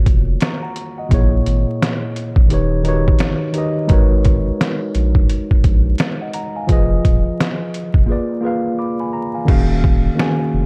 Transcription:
0.00 1.13 D#3 medium
0.00 1.10 A#3 medium
0.00 1.13 F4 medium
0.00 1.13 F#4 medium
0.00 1.12 A#4 medium
0.00 1.12 C#5 medium
0.00 1.13 D5 medium
0.06 0.37 F1 medium
0.06 kick medium
0.06 closed hi-hat medium
0.40 0.61 A#5 medium
0.40 0.62 C#6 medium
0.40 snare loud
0.40 closed hi-hat medium
0.63 0.96 F#5 medium
0.63 0.96 A#5 medium
0.76 closed hi-hat medium
0.98 1.32 D#5 medium
0.98 1.31 F#5 medium
1.09 1.42 A#1 loud
1.09 2.22 A#2 medium
1.09 2.22 A#3 medium
1.09 2.23 E4 medium
1.09 2.24 G#4 medium
1.09 kick medium
1.09 closed hi-hat medium
1.14 2.25 C#5 loud
1.46 1.65 G#1 medium
1.46 closed hi-hat medium
1.82 snare loud
1.82 closed hi-hat medium
2.16 closed hi-hat medium
2.36 2.48 A#1 loud
2.36 kick medium
2.48 3.12 D#1 loud
2.48 2.79 D#3 medium
2.48 2.80 D#4 medium
2.48 2.80 G4 medium
2.48 closed hi-hat medium
2.52 2.81 B4 medium
2.52 2.82 C#5 medium
2.83 3.43 D#3 medium
2.83 3.44 D#4 medium
2.83 2.94 F#4 medium
2.83 3.45 B4 medium
2.83 closed hi-hat medium
2.88 3.48 G4 medium
2.88 3.46 C#5 loud
3.08 kick medium
3.19 snare loud
3.19 closed hi-hat medium
3.53 3.83 D#3 medium
3.53 3.84 D#4 medium
3.53 3.85 G4 medium
3.53 closed hi-hat medium
3.57 3.85 B4 medium
3.57 3.86 D#5 medium
3.87 4.51 G#1 loud
3.87 5.01 G#3 medium
3.87 5.01 D#4 medium
3.87 5.02 F#4 medium
3.87 5.02 A#4 medium
3.87 kick loud
3.87 closed hi-hat medium
3.91 5.03 B4 medium
3.91 5.03 C#5 medium
4.25 kick medium
4.25 closed hi-hat medium
4.61 snare loud
4.61 closed hi-hat medium
4.95 5.25 A#1 loud
4.95 closed hi-hat medium
5.15 kick medium
5.30 closed hi-hat medium
5.51 kick medium
5.64 5.95 A#1 medium
5.64 kick medium
5.64 closed hi-hat medium
5.98 snare loud
5.98 closed hi-hat medium
6.21 6.34 D#5 soft
6.21 6.34 F#5 medium
6.33 6.55 F#5 medium
6.33 6.55 A#5 medium
6.33 closed hi-hat medium
6.56 6.89 F5 medium
6.56 6.89 G#5 medium
6.67 7.00 F1 loud
6.67 7.80 F3 medium
6.67 7.81 F4 medium
6.67 7.81 G#4 medium
6.67 kick medium
6.67 closed hi-hat medium
6.71 7.82 B4 medium
6.71 7.83 D#5 medium
7.05 7.23 D#1 medium
7.05 kick medium
7.05 closed hi-hat medium
7.40 snare loud
7.40 closed hi-hat medium
7.74 closed hi-hat medium
7.94 8.06 F1 medium
7.94 kick medium
8.06 8.37 A#3 medium
8.06 8.38 F4 medium
8.06 8.38 G#4 medium
8.10 8.39 B4 medium
8.10 8.40 D5 medium
8.41 9.01 A#3 medium
8.41 9.02 F4 medium
8.41 9.02 G#4 medium
8.45 9.03 B4 medium
8.45 8.80 F5 medium
8.79 8.99 B5 soft
8.79 8.99 D6 medium
9.00 9.13 G#5 medium
9.00 9.13 B5 medium
9.13 9.34 A#5 medium
9.34 9.49 F5 medium
9.34 9.68 G#5 medium
9.45 10.10 D#1 loud
9.45 10.05 D#3 medium
9.45 10.06 A#3 medium
9.45 10.06 C#4 medium
9.45 10.07 F#4 medium
9.45 kick loud
9.45 crash medium
9.50 10.08 G#4 medium
9.50 10.08 F5 medium
9.84 kick medium
10.15 10.66 D#3 medium
10.15 10.66 A#3 medium
10.15 10.66 C#4 medium
10.15 10.66 F#4 medium
10.19 10.66 G#4 medium
10.19 10.66 G#5 medium
10.19 snare loud
10.54 10.66 F1 medium

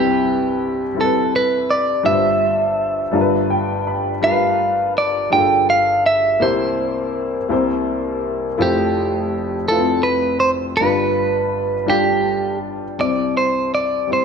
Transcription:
0.00 2.02 C2 medium
0.00 2.02 C3 medium
0.00 0.82 G3 medium
0.00 0.82 C4 medium
0.00 0.86 E4 medium
0.00 1.00 G4 medium
0.00 0.83 B4 medium
0.95 1.90 G3 medium
0.95 1.91 C4 medium
0.95 1.92 E4 medium
0.95 1.04 A4 medium
1.01 1.35 A4 medium
1.01 1.95 B4 medium
1.36 1.72 B4 medium
1.71 2.05 D5 medium
2.03 3.11 G1 medium
2.03 3.11 G2 medium
2.03 2.99 G3 medium
2.03 3.00 D4 medium
2.03 3.01 F4 medium
2.03 2.13 B4 medium
2.03 3.84 E5 loud
2.13 3.04 C5 medium
3.11 5.28 G1 medium
3.11 5.28 G2 medium
3.11 4.08 G3 medium
3.11 4.09 D4 medium
3.11 4.09 F4 medium
3.11 3.21 A#4 medium
3.21 4.13 B4 medium
3.50 3.85 G5 medium
3.87 4.21 B5 medium
4.22 5.18 G3 medium
4.22 5.18 D4 medium
4.22 5.19 F4 medium
4.22 4.31 A#4 medium
4.22 4.93 F5 loud
4.31 5.22 B4 medium
4.98 5.31 D5 medium
5.30 6.38 G1 medium
5.30 6.38 G2 medium
5.30 6.27 G3 medium
5.30 6.27 D4 medium
5.30 6.28 F4 medium
5.30 5.40 G#4 medium
5.30 5.69 G5 medium
5.40 6.31 A4 medium
5.70 6.06 F5 medium
6.06 6.44 E5 medium
6.40 7.47 C2 medium
6.40 7.47 C3 medium
6.40 7.36 A#3 medium
6.40 7.36 E4 medium
6.40 7.37 G4 medium
6.40 8.20 C5 medium
6.40 7.37 C5 medium
7.49 8.56 C2 medium
7.49 8.56 C3 medium
7.49 8.45 A#3 medium
7.49 8.45 E4 medium
7.49 8.46 G4 medium
7.49 8.47 C5 medium
8.58 10.75 F1 medium
8.58 10.74 F2 medium
8.58 9.54 A3 medium
8.58 9.55 E4 medium
8.58 9.55 F4 medium
8.58 9.56 C5 medium
8.62 9.68 G4 medium
9.68 10.64 A3 medium
9.68 10.65 E4 medium
9.68 10.66 F4 medium
9.68 10.07 A4 medium
9.68 9.77 B4 medium
9.78 10.69 C4 medium
10.03 10.40 B4 medium
10.40 10.50 C5 loud
10.77 12.95 G1 medium
10.77 12.95 G2 medium
10.77 11.74 G3 medium
10.77 11.75 D4 medium
10.77 11.95 B4 loud
10.81 11.75 F4 medium
10.81 11.76 B4 medium
11.86 12.83 G3 medium
11.86 12.84 D4 medium
11.86 12.84 F4 medium
11.86 12.84 G4 medium
11.86 12.58 G4 loud
11.95 12.57 A4 loud
12.98 14.25 C2 soft
12.98 14.25 C3 soft
12.98 13.94 G3 medium
12.98 13.94 C4 medium
12.98 13.95 E4 medium
12.98 13.95 C5 medium
12.98 13.37 D5 medium
13.37 13.74 C5 medium
13.75 14.11 D5 medium
14.07 14.25 G3 medium
14.07 14.25 C4 soft
14.07 14.25 E4 soft
14.07 14.25 C5 medium
14.13 14.25 C5 medium

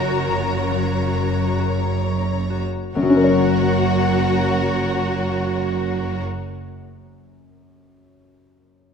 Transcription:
0.00 2.63 F#1 medium
0.00 1.76 F#2 soft
0.00 2.63 F#2 medium
0.00 0.70 F#3 soft
0.00 2.92 F#3 soft
0.00 2.92 C#4 soft
0.00 1.55 F#4 medium
0.00 1.58 F#4 soft
0.00 1.14 A#4 soft
0.00 2.27 A#4 medium
0.00 2.92 A#4 soft
0.00 2.03 C#5 soft
0.00 2.63 C#5 medium
0.00 2.63 A#5 medium
0.29 3.01 C#3 soft
0.71 3.01 F#3 soft
1.15 3.15 A#4 soft
1.59 2.49 F#4 soft
2.04 3.22 C#5 soft
2.50 6.40 F#4 soft
2.95 6.22 F#1 medium
2.95 6.85 F#2 soft
2.95 6.22 F#2 medium
2.95 6.23 F#2 soft
2.95 6.22 F#4 medium
2.95 6.22 A#4 medium
2.95 6.22 C#5 medium
2.95 6.22 F#5 medium
3.02 6.71 F#3 soft
3.02 6.30 F#3 soft
3.09 6.36 C#4 soft
3.09 6.37 C#4 soft
3.16 6.43 A#4 soft
3.23 6.50 C#5 soft
3.23 6.51 C#5 soft

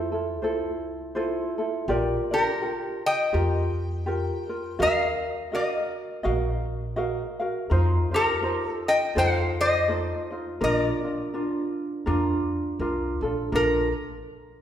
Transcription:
0.00 0.42 F2 medium
0.00 0.11 E4 medium
0.00 0.12 F4 medium
0.00 0.11 A4 medium
0.00 1.55 A4 medium
0.00 0.12 C5 medium
0.00 1.56 C5 medium
0.12 0.43 E4 soft
0.12 0.42 F4 soft
0.12 0.43 A4 medium
0.42 1.37 C2 medium
0.42 1.15 E4 medium
0.42 1.16 F4 medium
0.42 1.15 A4 medium
0.42 1.14 C5 medium
1.15 1.58 E4 medium
1.15 1.58 F4 medium
1.15 1.57 A4 medium
1.15 1.57 C5 medium
1.58 1.89 E4 soft
1.58 1.88 F4 soft
1.58 1.89 A4 medium
1.88 2.15 A#1 medium
1.88 2.31 F4 medium
1.88 2.30 G4 medium
1.88 2.31 A#4 medium
1.88 2.30 D5 medium
2.31 2.61 F4 soft
2.31 3.01 G4 medium
2.31 2.62 A#4 soft
2.31 3.06 A#4 medium
2.31 2.62 D5 soft
2.62 3.33 F4 medium
2.62 3.32 G4 medium
2.62 3.34 A#4 medium
3.06 4.77 D#5 medium
3.06 4.86 G5 loud
3.33 4.29 F2 medium
3.33 4.06 F4 medium
3.33 4.05 G4 medium
3.33 4.08 A#4 medium
4.06 4.48 F4 medium
4.06 4.48 G4 medium
4.06 4.48 A#4 medium
4.49 4.78 F4 soft
4.49 4.79 A#4 soft
4.79 5.07 D#2 loud
4.79 5.52 F#4 medium
4.79 5.53 A#4 medium
4.79 5.49 A#4 medium
4.79 5.51 D#5 medium
4.79 5.53 F5 medium
4.79 5.56 F5 loud
5.52 6.23 F#4 medium
5.52 6.24 A#4 medium
5.52 6.64 A#4 medium
5.52 6.23 D#5 medium
5.52 6.64 D#5 medium
5.52 6.24 F5 medium
6.23 7.20 A#1 medium
6.23 6.95 F#4 medium
6.23 6.97 A#4 medium
6.23 6.96 D#5 medium
6.23 6.98 F5 medium
6.96 7.39 F#4 medium
6.96 7.39 A#4 medium
6.96 7.39 D#5 medium
6.96 7.38 F5 medium
7.40 7.71 F#4 soft
7.40 7.69 A#4 medium
7.40 7.70 F5 medium
7.70 7.98 F2 loud
7.70 8.12 D#4 medium
7.70 8.11 F4 loud
7.70 8.12 A#4 medium
7.70 8.10 C5 loud
8.11 8.42 D#4 soft
8.11 8.42 F4 soft
8.11 8.82 G4 medium
8.11 8.42 C5 medium
8.16 8.67 A#4 loud
8.42 9.15 D#4 medium
8.42 9.16 F4 medium
8.42 9.15 A#4 medium
8.42 9.16 C5 medium
8.67 8.89 A4 loud
8.88 9.16 D#5 medium
8.88 9.16 G5 loud
9.15 10.11 F2 medium
9.15 9.88 D#4 medium
9.15 9.89 F4 medium
9.15 9.88 A4 medium
9.15 9.89 C5 medium
9.15 9.56 C5 medium
9.15 9.61 F5 loud
9.61 10.59 C5 medium
9.61 10.63 D#5 loud
9.88 10.31 D#4 medium
9.88 10.31 F4 medium
9.88 10.30 A4 medium
9.88 10.29 C5 medium
10.31 10.61 D#4 soft
10.31 10.61 F4 soft
10.31 10.60 C5 soft
10.61 10.89 A#1 loud
10.61 11.04 D4 medium
10.61 11.03 F4 medium
10.61 11.03 A#4 medium
10.61 13.20 A#4 medium
10.61 13.19 D5 medium
11.04 11.33 D4 soft
11.04 11.34 F4 soft
11.34 12.06 D4 medium
11.34 12.07 F4 medium
11.34 12.06 A#4 soft
12.06 12.55 F2 medium
12.06 12.80 D4 loud
12.06 12.81 F4 medium
12.06 12.80 A#4 medium
12.79 13.18 C2 medium
12.79 13.22 D4 medium
12.79 13.23 F4 medium
12.79 13.22 A#4 medium
13.21 13.49 A#1 medium
13.21 13.52 D4 soft
13.21 13.53 F4 medium
13.21 13.53 A4 medium
13.52 13.92 A#1 medium
13.52 13.87 D4 medium
13.52 13.87 F4 medium
13.52 13.88 A4 medium
13.52 13.86 A#4 medium
13.52 13.93 A#4 medium

